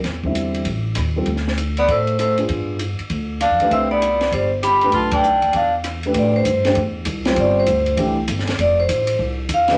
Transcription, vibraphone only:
X:1
M:4/4
L:1/8
Q:"Swing" 1/4=197
K:C
V:1 name="Vibraphone"
z8 | z3 d c2 c z | z6 f2 | e d3 c z b2 |
a g3 f z3 | [K:Am] d c3 z4 | d c3 z4 | d c3 z2 f ^d |]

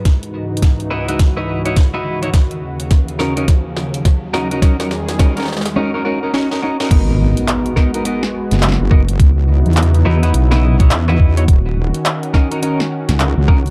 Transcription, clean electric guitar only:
X:1
M:4/4
L:1/16
Q:"Swing 16ths" 1/4=105
K:G#m
V:1 name="Clean electric guitar"
z6 [DEFB] [DEFB] z [DEFB]2 [DEFc] z [DEFB]2 [DEFc] | z6 [CDFA] [CDFA] z6 [CDFA] [CDFA] | [CDFA] [CDFA] z2 [CDFA] [CDFA] z2 [CDFA] [CDFA] [CDFA] [CDFA] [CDFA] [CDFA] [CDFA] [CDFA] | [B,DF]6 [B,DFA] [B,DFA] [B,DFA] z4 z [B,DFA] z |
z6 [DEFB] [DEFB] z [DEFB]2 [DEFc] z [DEFB]2 [DEFc] | z6 [CDFA] [CDFA] [CDFA] z4 z [CDFA] z |]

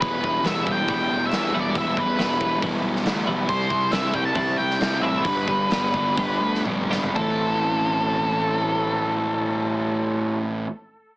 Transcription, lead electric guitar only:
X:1
M:4/4
L:1/16
Q:1/4=132
K:Am
V:1 name="Lead electric guitar"
B4 e2 g2 g3 e3 d2 | e2 B6 z8 | c4 e2 g a3 g4 e2 | B12 z4 |
A16- | A16 |]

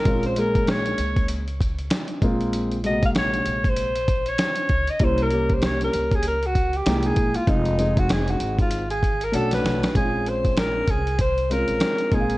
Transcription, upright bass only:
X:1
M:4/4
L:1/16
Q:"Swing 16ths" 1/4=97
K:Gblyd
V:1 name="Upright bass" clef=bass
B,,,6 D,,6 z2 B,,,2- | B,,,6 B,,,6 z2 D,, z | C,,6 D,,6 C,,2 B,,, z | F,,,6 A,,,6 =B,,,2 B,,, z |
B,,,6 C,,4- C,, B,,, z2 B,,,2 |]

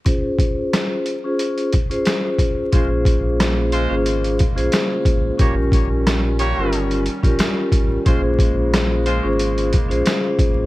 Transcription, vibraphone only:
X:1
M:4/4
L:1/16
Q:"Swing 16ths" 1/4=90
K:Bbdor
V:1 name="Vibraphone"
[DFAc]6 z [DFAc]3 z [DFAc]4- [DFAc] | [DFAc]6 z [DFAc]3 z [DFAc]4- [DFAc] | [DFGB]6 z [DFGB]3 z [DFGB]4- [DFGB] | [DFAc]6 z [DFAc]3 z [DFAc]4- [DFAc] |]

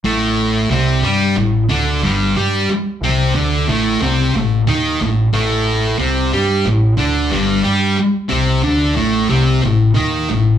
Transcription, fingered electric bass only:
X:1
M:4/4
L:1/8
Q:1/4=91
K:Am
V:1 name="Fingered electric bass" clef=bass
A,,,2 C,, G,, A,,, D,, G,,, G,, | z C,, D,, A,,, C,, A,,, ^D,, A,,, | A,,,2 C,, G,, A,,, D,, G,,, G,, | z C,, D,, A,,, C,, A,,, ^D,, A,,, |]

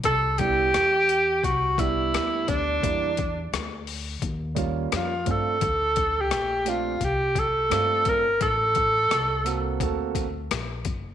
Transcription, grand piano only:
X:1
M:4/4
L:1/8
Q:"Swing 16ths" 1/4=86
K:Dphr
V:1 name="Grand piano"
z [G,=B,D=E] z3 [G,B,DG]3 | [G,B,D=E] z4 [G,B,_DF] z [A,C=DF] | z3 [A,CDF] z2 [A,CDF] z | z3 [B,C^FA] [B,CFA] z3 |]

